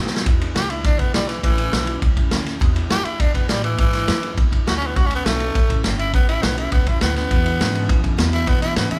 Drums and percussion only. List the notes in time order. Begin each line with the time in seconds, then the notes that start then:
0.07 snare
0.17 snare
0.26 kick, ride
0.41 ride
0.56 snare, ride
0.70 ride
0.84 kick, snare, ride
0.99 kick, ride
1.14 snare, ride
1.29 snare, ride
1.43 kick, ride
1.58 ride
1.73 snare, ride
1.87 ride
2.02 kick, ride
2.17 kick, ride
2.31 snare, ride
2.46 snare, ride
2.61 kick, ride
2.76 ride
2.90 snare, ride
3.05 ride
3.20 kick, ride
3.34 kick, ride
3.49 snare, ride
3.64 ride
3.78 kick, ride
3.93 snare, ride
4.08 snare, ride
4.23 ride
4.38 kick, ride
4.52 kick, ride
4.67 snare, ride
4.82 ride
4.96 kick, ride
5.11 ride
5.26 snare, ride
5.40 ride
5.55 kick, ride
5.70 kick, ride
5.84 snare, ride
5.99 ride
6.13 kick, ride
6.29 ride
6.43 snare, ride
6.58 ride
6.72 kick, ride
6.87 kick, ride
7.01 snare, ride
7.16 snare, ride
7.31 kick, ride
7.46 ride
7.61 snare, ride
7.75 ride
7.89 kick, ride
8.04 kick, ride
8.18 snare, ride
8.33 snare, ride
8.47 kick, ride
8.62 snare, ride
8.76 snare, ride
8.91 ride